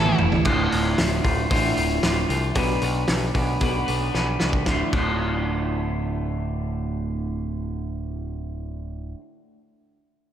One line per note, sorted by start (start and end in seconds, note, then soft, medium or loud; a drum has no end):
0.00 0.11 A1 medium
0.00 0.43 A2 medium
0.00 0.44 E3 medium
0.00 0.20 A3 medium
0.00 0.19 C#4 medium
0.00 0.18 E4 medium
0.00 0.16 A4 medium
0.00 0.17 A4 medium
0.06 high tom medium
0.18 0.37 E1 medium
0.18 0.43 A2 medium
0.18 0.43 E3 medium
0.18 0.45 A3 medium
0.18 0.44 C#4 medium
0.18 0.44 E4 medium
0.18 0.43 A4 medium
0.18 mid tom medium
0.32 floor tom medium
0.44 0.67 D1 medium
0.44 1.48 D2 medium
0.44 1.49 A2 medium
0.44 1.25 D3 medium
0.44 1.24 A3 medium
0.44 1.22 F4 loud
0.44 kick loud
0.44 crash medium
0.72 0.94 D1 medium
0.72 open hi-hat soft
0.98 1.20 D1 medium
0.98 snare loud
0.98 open hi-hat medium
1.23 1.46 D1 medium
1.23 1.49 D3 medium
1.23 1.50 A3 medium
1.23 1.51 F4 medium
1.23 kick medium
1.23 open hi-hat soft
1.49 1.72 A1 medium
1.49 2.02 D2 medium
1.49 2.01 A2 loud
1.49 1.77 D3 loud
1.49 1.75 A3 medium
1.49 1.73 F4 medium
1.49 kick loud
1.49 open hi-hat medium
1.75 1.99 D1 medium
1.75 2.02 D3 soft
1.75 2.03 A3 medium
1.75 2.04 F4 medium
1.75 open hi-hat soft
2.02 2.25 D1 medium
2.02 2.54 A2 medium
2.02 2.30 D3 medium
2.02 2.29 A3 medium
2.02 2.27 F4 medium
2.02 snare loud
2.02 open hi-hat medium
2.29 2.51 C2 medium
2.29 2.55 D3 medium
2.29 2.55 A3 medium
2.29 2.54 F4 medium
2.29 open hi-hat soft
2.55 2.77 B1 medium
2.55 3.59 B2 medium
2.55 3.60 F#3 medium
2.55 3.36 B3 medium
2.55 3.35 D4 medium
2.55 3.35 F#4 medium
2.55 3.33 B4 medium
2.55 kick medium
2.55 open hi-hat medium
2.81 3.04 B1 medium
2.81 open hi-hat soft
3.08 3.30 B1 medium
3.08 snare medium
3.08 open hi-hat medium
3.34 3.56 B1 medium
3.34 3.60 B3 medium
3.34 3.61 D4 medium
3.34 3.62 F#4 medium
3.34 3.62 B4 medium
3.34 kick medium
3.34 open hi-hat soft
3.60 3.83 B1 medium
3.60 4.13 B2 medium
3.60 4.14 F#3 medium
3.60 3.88 B3 medium
3.60 3.87 D4 medium
3.60 3.86 F#4 medium
3.60 3.85 B4 medium
3.60 kick medium
3.60 open hi-hat medium
3.86 4.10 B1 medium
3.86 4.10 B3 medium
3.86 4.12 D4 medium
3.86 4.13 F#4 medium
3.86 4.14 B4 medium
3.86 open hi-hat soft
4.12 4.36 B1 medium
4.12 4.41 B3 medium
4.12 4.40 D4 medium
4.12 4.39 F#4 medium
4.12 4.38 B4 medium
4.12 snare soft
4.39 4.63 C2 medium
4.39 4.66 B3 medium
4.39 4.65 D4 medium
4.39 4.65 F#4 medium
4.39 4.64 B4 medium
4.39 snare medium
4.53 kick medium
4.66 4.81 D1 medium
4.66 4.92 D2 medium
4.66 4.93 A2 medium
4.66 4.95 D3 medium
4.66 4.95 A3 medium
4.66 4.96 F4 medium
4.66 kick medium
4.66 snare medium
4.93 9.13 D1 medium
4.93 9.17 D2 medium
4.93 9.18 A2 medium
4.93 9.19 D3 medium
4.93 9.20 A3 medium
4.93 9.21 F4 medium
4.93 kick loud
4.93 crash medium